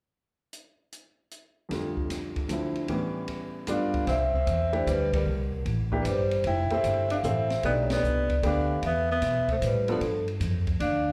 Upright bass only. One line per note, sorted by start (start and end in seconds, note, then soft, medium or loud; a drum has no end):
4.07 4.46 C2 medium
4.47 4.85 E2 medium
4.87 5.25 D2 medium
5.25 5.64 C2 medium
5.65 6.04 A1 medium
6.05 6.44 G1 medium
6.44 6.69 F1 medium
6.71 muted upright bass stroke soft
6.84 7.23 G1 medium
7.23 7.62 A1 medium
7.63 8.02 B1 medium
8.03 8.41 C2 medium
8.43 8.81 D2 medium
8.82 9.21 E2 medium
9.22 9.60 B2 medium
9.61 10.00 A2 medium
10.01 10.39 G2 medium
10.40 10.79 F2 medium
10.80 11.12 D2 medium